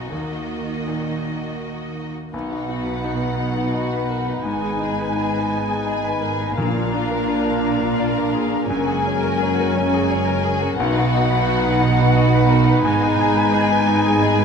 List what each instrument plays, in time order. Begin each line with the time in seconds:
Already playing: grand piano F#2, viola section B3 D#4, violin section F#4
0.11 grand piano D#2, cello section D#3, viola section A#3, violin section D#5
0.87 grand piano A#2
2.33 double bass section B1, grand piano B1, cello section B2, violin section B3 F#5, french horn section B3 D#4, viola section D#4, clarinet D#4, cor anglais B4, flute section F#5
2.51 violin section D#4, grand piano F#4
2.67 grand piano D#4, violin section F#4
2.86 violin section B4, grand piano B4
3.04 grand piano D#4, violin section F#4
3.21 violin section D#4, grand piano B4
3.40 violin section B3, grand piano D#4
3.56 violin section D#4, grand piano F#4
3.74 violin section F#4, grand piano D#5
3.92 grand piano B4, violin section B4
4.10 violin section F#4, grand piano A#4
4.27 violin section D#4, grand piano B4
4.45 double bass section G#1, grand piano G#2, cello section G#2, violin section B3 G#5, flute section G#5
4.62 grand piano G#4
4.66 violin section D#4
4.80 grand piano D#4, violin section G#4
4.99 grand piano B4, violin section B4
5.16 grand piano D#4, violin section G#4
5.33 grand piano B4
5.38 violin section D#4
5.51 grand piano D#4
5.56 violin section B3
5.69 violin section D#4, grand piano G#4
5.87 violin section G#4, grand piano D#5
6.04 grand piano B4
6.08 violin section B4
6.21 violin section G#4, grand piano A#4
6.41 violin section D#4, grand piano B4
6.55 double bass section A#1, cello section A#2, grand piano A#2, timpani A#2, violin section A#3 F5, french horn section A#3 D4, viola section D4, clarinet D4, cor anglais A#4, flute section A#5
6.73 violin section D4, grand piano F4
6.93 grand piano D4, violin section F4
7.10 violin section A#4, grand piano A#4
7.26 grand piano D4, violin section F4
7.43 violin section D4, grand piano A#4
7.63 violin section A#3, grand piano D4
7.78 violin section D4, grand piano F4
7.96 violin section F4
8.00 grand piano D5
8.16 violin section A#4, grand piano A#4
8.32 violin section F4, grand piano G#4
8.49 violin section D4
8.54 grand piano A#4
8.67 double bass section F#1, cello section F#2, grand piano F#2, french horn section G#3 A#3, violin section C#4 G#5, clarinet C#4, viola section C#4, flute section G#5
8.85 violin section F#4, grand piano G#4
9.02 violin section G#4
9.07 grand piano C#4
9.19 violin section A#4
9.24 grand piano A#4
9.38 violin section G#4
9.42 grand piano C#4
9.54 violin section F#4
9.60 grand piano A#4
9.74 violin section C#4, grand piano C#4
9.91 violin section F#4, grand piano G#4
10.09 violin section G#4, grand piano C#5
10.25 violin section A#4, grand piano A#4
10.45 violin section G#4, grand piano G#4
10.61 violin section F#4, grand piano A#4
10.76 double bass section B1, grand piano B1, cello section B2, violin section B3 F#5, french horn section B3 D#4, clarinet D#4, viola section D#4, cor anglais B4, flute section F#5
10.94 violin section D#4, grand piano F#4
11.09 violin section F#4
11.15 grand piano D#4
11.28 violin section B4, grand piano B4
11.43 violin section F#4
11.47 grand piano D#4
11.61 violin section D#4, grand piano B4
11.79 violin section B3, grand piano D#4
11.96 violin section D#4, grand piano F#4
12.14 violin section F#4, grand piano D#5
12.33 violin section B4, grand piano B4
12.49 violin section F#4, grand piano A#4
12.65 violin section D#4, grand piano B4
12.84 double bass section G#1, cello section G#2, grand piano G#2, violin section B3 G#5, flute section G#5
13.01 violin section D#4, grand piano G#4
13.19 grand piano D#4, violin section G#4
13.35 violin section B4, grand piano B4
13.53 grand piano D#4, violin section G#4
13.69 violin section D#4, grand piano B4
13.87 violin section B3, grand piano D#4
14.05 violin section D#4, grand piano G#4
14.22 violin section G#4, grand piano D#5
14.39 violin section B4, grand piano B4